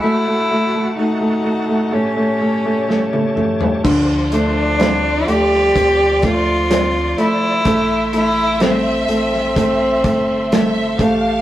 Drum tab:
CC |----------------|x---------------|----------------|
HH |----------------|--x-x-x-x-x-x-x-|x-x-x-x-x-x-x-x-|
SD |------------o---|----o--o----o---|----o--o----o---|
T1 |-------------o--|----------------|----------------|
T2 |--------------o-|----------------|----------------|
FT |---------------o|----------------|----------------|
BD |----------------|o-------o-o-----|o-------o-o---o-|